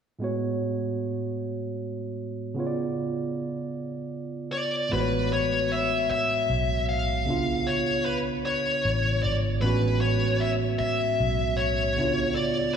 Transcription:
0.19 2.51 A2 soft
0.19 2.52 G#3 soft
0.19 2.52 B3 medium
0.23 2.53 F#4 soft
0.23 2.54 C#5 medium
2.54 4.86 C#3 medium
2.54 4.87 B3 soft
2.59 4.89 F4 medium
2.59 2.64 C#5 medium
2.67 4.93 D5 medium
4.52 4.92 D5 medium
4.89 6.06 A1 medium
4.89 7.21 A2 medium
4.89 7.22 G#3 soft
4.89 7.23 B3 soft
4.89 5.32 B4 medium
4.93 7.23 F#4 soft
4.93 4.99 C5 soft
5.01 7.27 C#5 medium
5.33 5.72 C#5 medium
5.72 6.09 E5 medium
6.11 6.84 E5 medium
6.11 muted fingered electric bass stroke soft
6.50 7.28 B1 medium
6.89 7.69 F5 medium
7.25 8.80 C#2 medium
7.25 9.57 C#3 medium
7.25 9.58 B3 soft
7.25 9.59 D4 soft
7.30 9.60 F4 medium
7.67 8.05 C#5 medium
8.06 8.16 B4 medium
8.46 9.22 C#5 medium
8.85 9.20 A1 medium
9.23 9.59 G#1 medium
9.23 9.33 D5 medium
9.60 10.76 A1 medium
9.60 11.92 A2 medium
9.60 11.93 G#3 medium
9.60 11.94 B3 soft
9.60 11.94 C#4 medium
9.60 10.01 B4 medium
9.66 11.95 F#4 medium
10.01 10.41 C#5 medium
10.40 10.51 E5 medium
10.79 11.60 E5 medium
10.79 muted fingered electric bass stroke soft
11.20 11.98 B1 medium
11.57 12.35 C#5 medium
11.96 12.77 C#2 medium
11.96 12.77 C#3 medium
11.96 12.77 B3 medium
11.96 12.77 D4 soft
12.01 12.77 F4 medium
12.36 12.74 D5 medium

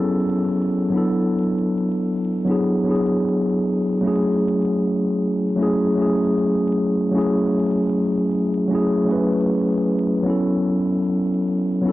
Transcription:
0.00 0.90 F#3 medium
0.00 0.92 B3 medium
0.00 0.94 C#4 medium
0.00 0.94 E4 medium
0.00 0.94 G#4 medium
0.00 0.94 A4 medium
0.90 2.34 F#3 medium
0.90 2.35 B3 medium
0.90 2.36 D4 medium
0.96 2.37 E4 medium
0.96 2.38 A4 medium
2.45 2.82 F#3 medium
2.45 2.83 B3 medium
2.45 2.84 D4 medium
2.50 2.85 E4 medium
2.50 2.85 G#4 medium
2.84 3.93 F#3 medium
2.84 3.94 B3 medium
2.84 3.95 D4 medium
2.89 3.95 E4 medium
2.89 3.96 G#4 medium
4.01 5.45 F#3 medium
4.01 5.46 A3 medium
4.01 5.47 C#4 medium
4.06 5.48 E4 medium
4.06 5.49 G#4 medium
5.56 5.93 F#3 medium
5.56 5.94 A3 medium
5.56 5.95 C#4 medium
5.61 5.96 E4 medium
5.61 5.97 G#4 medium
5.95 7.04 F#3 medium
5.95 7.05 A3 medium
5.95 7.06 C#4 medium
6.00 7.07 E4 medium
6.00 7.08 G#4 medium
7.11 8.57 F#3 medium
7.11 8.58 A3 medium
7.11 8.58 C#4 medium
7.17 8.59 E4 medium
7.17 8.60 G#4 medium
8.68 9.04 F#3 medium
8.68 9.06 A3 medium
8.68 9.07 C#4 medium
8.73 9.08 E4 medium
8.73 9.09 G#4 medium
9.05 10.15 F#3 medium
9.05 10.16 A3 medium
9.05 10.17 C#4 medium
9.10 10.18 E4 medium
9.10 10.19 B4 medium
10.23 11.68 F#3 medium
10.23 11.69 B3 medium
10.23 11.70 C#4 medium
10.28 11.71 E4 medium
10.28 11.72 A4 medium
11.82 11.92 F#3 medium
11.82 11.92 B3 medium
11.82 11.92 C#4 medium
11.87 11.92 E4 medium
11.87 11.92 A4 medium

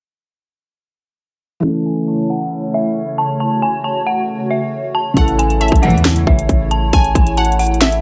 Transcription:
1.60 5.13 C#3 medium
1.60 5.11 E3 medium
1.60 5.12 A3 medium
1.60 5.13 A3 medium
1.60 3.38 E4 medium
1.60 5.13 C#5 medium
1.60 1.82 A5 medium
1.65 5.13 C#4 medium
1.86 2.04 G#5 medium
2.08 2.26 A5 medium
2.30 2.48 F#5 medium
2.74 3.16 E5 medium
3.18 3.37 A5 medium
3.40 5.15 F#4 medium
3.40 3.59 A5 medium
3.62 3.81 G#5 medium
3.84 4.03 A5 medium
4.07 4.25 F#5 medium
4.51 4.92 E5 medium
4.95 5.13 A5 medium
5.14 5.70 A1 loud
5.14 8.01 C#3 medium
5.14 8.01 E3 medium
5.14 8.01 A3 medium
5.14 8.01 E4 medium
5.14 8.01 C#5 medium
5.14 5.59 F#5 loud
5.14 5.35 A5 medium
5.14 kick loud
5.14 closed hi-hat medium
5.19 8.01 E4 medium
5.19 8.01 A4 medium
5.28 closed hi-hat medium
5.39 5.57 G#5 medium
5.39 closed hi-hat medium
5.50 closed hi-hat medium
5.61 6.02 E5 medium
5.61 5.79 A5 medium
5.61 closed hi-hat medium
5.68 5.95 A1 loud
5.68 kick loud
5.68 closed hi-hat medium
5.76 closed hi-hat medium
5.83 6.25 C#2 loud
5.83 6.25 A2 loud
5.83 6.25 E3 loud
5.83 6.01 F#5 medium
5.83 closed hi-hat soft
5.90 6.25 E2 loud
5.90 closed hi-hat soft
5.98 closed hi-hat soft
6.05 snare loud
6.05 closed hi-hat medium
6.16 closed hi-hat medium
6.27 6.48 A1 loud
6.27 6.68 E5 medium
6.27 kick medium
6.39 closed hi-hat medium
6.49 6.91 A1 loud
6.49 kick medium
6.49 closed hi-hat medium
6.71 6.90 A5 medium
6.71 closed hi-hat medium
6.93 7.14 A1 loud
6.93 7.35 G#5 loud
6.93 7.12 A5 medium
6.93 kick loud
6.93 closed hi-hat medium
7.04 closed hi-hat soft
7.15 8.00 A1 loud
7.15 7.34 G#5 medium
7.15 kick loud
7.15 closed hi-hat medium
7.27 closed hi-hat medium
7.37 7.79 F#5 medium
7.37 7.56 A5 medium
7.37 closed hi-hat medium
7.45 closed hi-hat medium
7.52 closed hi-hat medium
7.59 7.78 F#5 medium
7.59 closed hi-hat soft
7.59 open hi-hat medium
7.67 closed hi-hat soft
7.74 closed hi-hat soft
7.81 8.01 E5 medium
7.81 snare loud
7.81 closed hi-hat medium
7.92 closed hi-hat medium

